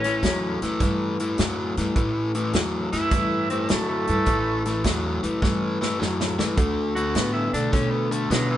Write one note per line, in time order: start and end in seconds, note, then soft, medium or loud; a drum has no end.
0.00 0.21 A1 medium
0.00 0.97 C#4 loud
0.04 0.22 A2 medium
0.04 0.22 E3 medium
0.04 snare soft
0.04 closed hi-hat medium
0.23 0.61 E2 medium
0.23 0.58 A2 medium
0.23 0.58 F#3 medium
0.23 kick medium
0.23 snare loud
0.23 closed hi-hat medium
0.62 0.80 F#2 medium
0.62 0.79 A2 medium
0.62 0.79 E3 medium
0.62 snare soft
0.62 closed hi-hat medium
0.80 1.36 G2 medium
0.80 1.16 A2 medium
0.80 1.16 E3 medium
0.80 kick loud
0.80 snare soft
0.80 closed hi-hat medium
1.20 1.37 A2 medium
1.20 1.37 E3 medium
1.20 closed hi-hat medium
1.38 1.76 F#2 medium
1.38 1.74 A2 medium
1.38 1.74 F#3 medium
1.38 snare loud
1.38 closed hi-hat medium
1.77 1.95 G2 medium
1.77 1.95 A2 medium
1.77 1.95 E3 medium
1.77 snare soft
1.77 closed hi-hat medium
1.96 2.52 A1 medium
1.96 2.31 A2 medium
1.96 2.31 E3 medium
1.96 kick loud
1.96 closed hi-hat medium
2.35 2.52 A2 medium
2.35 2.52 E3 medium
2.35 closed hi-hat medium
2.53 2.91 E2 medium
2.53 2.89 A2 medium
2.53 2.89 F#3 medium
2.53 snare loud
2.53 closed hi-hat medium
2.92 3.11 F#2 medium
2.92 3.10 A2 medium
2.92 3.10 E3 medium
2.92 3.48 E4 loud
2.92 snare soft
2.92 closed hi-hat medium
3.11 3.67 G2 medium
3.11 3.47 A2 medium
3.11 3.47 E3 medium
3.11 kick loud
3.11 snare soft
3.11 closed hi-hat medium
3.50 3.68 A2 medium
3.50 3.68 E3 medium
3.50 3.72 C4 medium
3.50 closed hi-hat medium
3.69 4.07 F#2 medium
3.69 4.05 A2 medium
3.69 4.05 F#3 medium
3.69 3.88 A3 medium
3.69 snare loud
3.69 closed hi-hat medium
3.89 5.01 A3 loud
4.07 4.26 G2 medium
4.07 4.25 A2 medium
4.07 4.25 E3 medium
4.07 closed hi-hat medium
4.26 4.83 A1 medium
4.26 4.62 A2 medium
4.26 4.62 E3 medium
4.26 kick loud
4.26 closed hi-hat medium
4.65 4.83 A2 medium
4.65 4.83 E3 medium
4.65 snare soft
4.65 closed hi-hat medium
4.84 5.22 E2 medium
4.84 5.20 A2 medium
4.84 5.20 F#3 medium
4.84 kick medium
4.84 snare loud
4.84 closed hi-hat medium
5.23 5.42 F#2 medium
5.23 5.41 A2 medium
5.23 5.41 E3 medium
5.23 closed hi-hat medium
5.42 5.98 G2 medium
5.42 5.77 A2 medium
5.42 5.78 E3 medium
5.42 kick loud
5.42 snare medium
5.81 5.98 A2 medium
5.81 5.99 E3 medium
5.81 snare medium
6.00 6.38 F#2 medium
6.00 6.35 A2 medium
6.00 6.35 F#3 medium
6.00 snare medium
6.21 snare medium
6.38 6.57 G2 medium
6.38 6.56 A2 medium
6.38 6.56 E3 medium
6.38 snare medium
6.57 7.13 D2 medium
6.57 6.93 D3 medium
6.57 6.93 A3 medium
6.57 kick loud
6.57 closed hi-hat medium
6.95 7.14 D3 medium
6.95 7.14 A3 medium
6.95 7.33 F#4 medium
6.95 closed hi-hat medium
7.15 7.52 A2 medium
7.15 7.51 D3 medium
7.15 7.51 B3 medium
7.15 snare loud
7.15 closed hi-hat medium
7.33 7.53 E4 medium
7.53 7.72 B2 medium
7.53 7.71 D3 medium
7.53 7.71 A3 medium
7.53 7.74 D4 medium
7.53 snare soft
7.53 closed hi-hat medium
7.72 8.29 B2 medium
7.72 8.08 D3 medium
7.72 8.08 A3 medium
7.72 7.92 C#4 medium
7.72 kick loud
7.72 snare soft
7.72 closed hi-hat medium
7.91 8.13 B3 medium
8.11 8.29 D3 medium
8.11 8.29 A3 medium
8.11 8.33 A3 medium
8.11 closed hi-hat medium
8.30 8.57 B2 medium
8.30 8.57 D3 medium
8.30 8.50 F#3 medium
8.30 8.57 B3 medium
8.30 snare loud
8.30 closed hi-hat medium
8.50 8.57 E3 medium